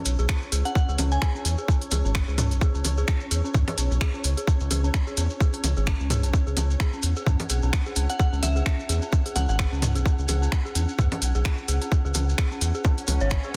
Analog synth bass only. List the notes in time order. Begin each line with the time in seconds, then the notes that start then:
0.06 B1
0.19 B1
0.52 C#2
0.89 C#2
0.99 C#2
1.45 E2
1.92 C#2
2.05 G#1
2.28 C#2
2.51 B1
2.75 C#2
2.85 C#2
3.31 E2
3.54 E2
3.78 B1
3.91 B1
4.24 C#2
4.61 C#2
4.71 C#2
5.17 E2
5.64 C#2
5.77 G#1
6.00 C#2
6.24 B1
6.47 C#2
6.57 C#2
7.03 E2
7.27 E2
7.50 B1
7.63 B1
7.96 C#2
8.33 C#2
8.43 C#2
8.89 E2
9.36 C#2
9.49 G#1
9.72 C#2
9.96 B1
10.19 C#2
10.29 C#2
10.75 E2
10.99 E2
11.22 B1
11.35 B1
11.68 C#2
12.05 C#2
12.15 C#2
12.61 E2
13.08 C#2
13.21 G#1